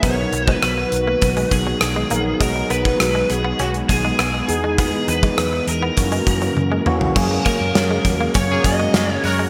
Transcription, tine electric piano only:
X:1
M:4/4
L:1/16
Q:1/4=101
K:B
V:1 name="Tine electric piano"
[F,B,DA]4- [F,B,DA] z8 z [F,B,DA]2 | [F,B,DG]4- [F,B,DG] z8 z [E,B,DG]2- | [E,B,DG]4 z4 [E,A,CF]4 z2 [E,A,CF]2 | [F,A,CG]2 z2 [F,A,CG]4 z2 [F,A,CG]4 z2 |]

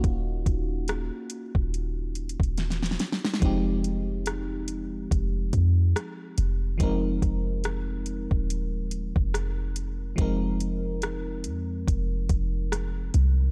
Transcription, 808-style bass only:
X:1
M:4/4
L:1/16
Q:"Swing 16ths" 1/4=71
K:Fm
V:1 name="808-style bass" clef=bass
E,,,2 E,,,3 z2 E,,,4 E,,,3 z2 | F,,,8 F,,,2 F,,2 z2 F,,,2 | F,,,2 F,,,4- F,,, E,,,4 F,,,4- F,,, | F,,,6 F,,2 F,,,2 F,,,4 C,,2 |]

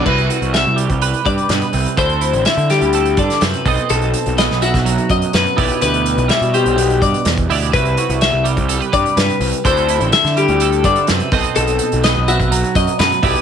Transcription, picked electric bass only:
X:1
M:4/4
L:1/16
Q:1/4=125
K:Clyd
V:1 name="Picked electric bass" clef=bass
C,,2 z C,,2 C,,2 C,,2 z G,, z G,, z C,, z | D,,3 A,,, z D,2 D,,3 G,, z F,, z B,,, z | B,,,2 z B,,,2 B,,,2 B,,,2 z F,, z F,, z B,,, z | D,,3 B,,, z B,,2 B,,,3 G,, z E,,2 D,,2 |
C,,2 z C,,2 C,,2 C,,2 z G,, z G,, z C,, z | D,,3 A,,, z D,2 D,,3 G,, z F,, z B,,, z | B,,,2 z B,,,2 B,,,2 B,,,2 z F,, z F,, z B,,, z |]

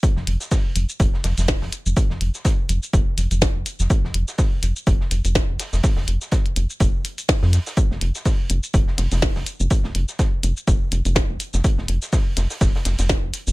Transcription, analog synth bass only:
X:1
M:4/4
L:1/16
Q:"Swing 16ths" 1/4=124
K:Cphr
V:1 name="Analog synth bass" clef=bass
z F,,, F,,, z3 F,,, z F,,, z F,,, F,,, z F,,, z F,,, | z F,,, F,,, z3 F,,, z F,,, z F,,, F,,, z F,,, z F,,, | z F,,, F,,, z3 F,,, z F,,, z F,,, F,,, z F,,, z F,,, | z F,,, F,,, z3 F,,, z F,,, z4 F,, z2 |
z F,,, F,,, z3 F,,, z F,,, z F,,, F,,, z F,,, z F,,, | z F,,, F,,, z3 F,,, z F,,, z F,,, F,,, z F,,, z F,,, | z F,,, F,,, z3 F,,, z F,,, z F,,, F,,, z F,,, z F,,, |]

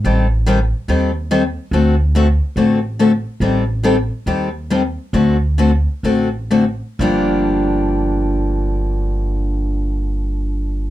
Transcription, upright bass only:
X:1
M:4/4
L:1/8
Q:"Swing" 1/4=136
K:Gm
V:1 name="Upright bass" clef=bass
A,,,4 E,,4 | D,,4 A,,,4 | A,,,4 E,,4 | D,,4 A,,,4 |
G,,,8- | G,,,8 |]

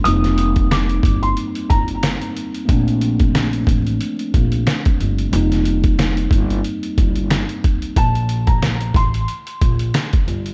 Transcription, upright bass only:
X:1
M:4/4
L:1/16
Q:"Swing 16ths" 1/4=91
K:Bb
V:1 name="Upright bass" clef=bass
F,,,6 G,,,2 z2 G,,,3 z3 | B,,,6 A,,,2 z2 B,,,2 z2 G,,,2 | F,,,6 G,,,2 z2 G,,,3 z3 | B,,,6 A,,,2 z2 B,,,2 z2 G,,,2 |]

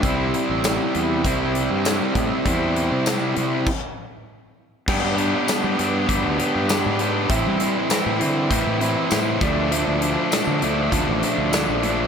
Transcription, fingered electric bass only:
X:1
M:4/4
L:1/16
Q:1/4=99
K:Gmix
V:1 name="Fingered electric bass" clef=bass
C,,2 z A,,,2 z E,,2 C,,3 G,,2 z A,, z | E,,3 C,3 C,2 z8 | G,, G,,2 z2 G, G,,2 G,, D,, z G,,2 _A,,3 | A,, G,2 z2 A,, D,2 A,, A,,2 z A,,2 D,,2- |
D,, D,,2 z2 D, D,,2 D,, A,,, z D,,2 _B,,,3 |]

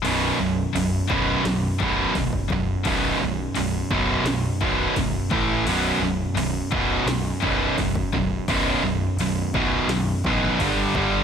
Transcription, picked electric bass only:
X:1
M:4/4
L:1/8
Q:1/4=85
K:Bm
V:1 name="Picked electric bass" clef=bass
B,,,, B,,,, B,,,, B,,,, B,,, B,,,, B,,,, B,,,, | B,,,, B,,,, B,,,, B,,,, B,,, B,,,, B,,,, A,,, | B,,,, B,,,, B,,,, B,,,, B,,, B,,,, B,,,, B,,,, | B,,,, B,,,, B,,,, B,,,, B,,, A,,, G,,, G,,, |]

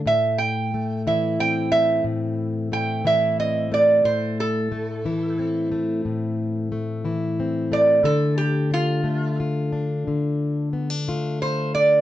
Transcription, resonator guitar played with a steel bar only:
X:1
M:12/8
L:1/8
Q:3/8=60
K:Am
V:1 name="Resonator guitar played with a steel bar"
e g2 e g e z2 g e ^d =d | c A4 z6 d | A G F2 z6 c d |]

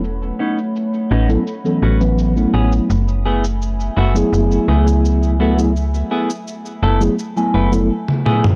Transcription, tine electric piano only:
X:1
M:4/4
L:1/16
Q:1/4=84
K:F#m
V:1 name="Tine electric piano"
z6 z [F,B,CEA] z [E,F,B,CA]2 [E,F,B,CB]2 [F,A,B,CE]3 | z6 z [F,A,B,EG]6- [F,A,B,EG] [F,A,B,EA] [F,A,B,EG] | z6 z [F,A,B,EG] z [F,A,B,Eg]2 [F,A,B,EA] z4 |]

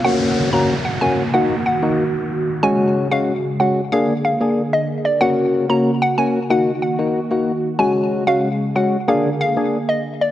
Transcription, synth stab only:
X:1
M:4/4
L:1/16
Q:1/4=93
K:Ebm
V:1 name="Synth stab"
[B,DG]3 [B,DG] z2 [B,DG] z [B,EG] z2 [B,EG] z4 | [A,DG]3 [A,DG] z2 [A,DG] z [B,=DA] z2 [B,DA] z4 | [B,DG]3 [B,DG] z2 [B,DG] z [B,EG] z2 [B,EG] z [B,EG] z2 | [A,DG]3 [A,DG] z2 [A,DG] z [B,=DA] z2 [B,DA] z4 |]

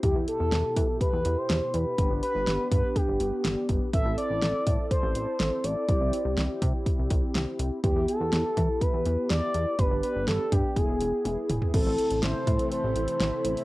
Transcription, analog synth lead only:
X:1
M:4/4
L:1/16
Q:1/4=123
K:Am
V:1 name="Analog synth lead"
G2 A6 B3 c3 B2- | B2 B4 B2 G6 z2 | e2 d6 c6 d2- | d6 z8 z2 |
G2 A6 B4 d4 | B2 B2 A2 G2 ^G6 z2 | A4 c4 c8 |]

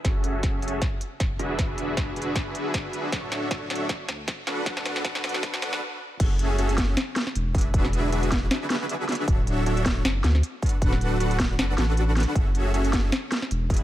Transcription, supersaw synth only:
X:1
M:4/4
L:1/8
Q:"Swing 16ths" 1/4=156
K:F#m
V:1 name="Supersaw synth"
[CFGAe]2 [CFGAe] [CFGAe] z3 [DFGBe]- | [DFGBe]2 [DFGBe] [DFGBe]4- [DFGBe] | [DFAce]2 [DFAce] [DFAce] z3 [DFABf]- | [DFABf]2 [DFABf] [DFABf]3 z2 |
[CFGAe]2 [CFGAe] [CFGAe] z3 [DFGBe]- | [DFGBe]2 [DFGBe] [DFGBe]4- [DFGBe] | [DFAce]2 [DFAce] [DFAce] z3 [DFABf]- | [DFABf]2 [DFABf] [DFABf]4- [DFABf] |
[CFGAe]2 [CFGAe] [CFGAe] z3 [DFGBe] |]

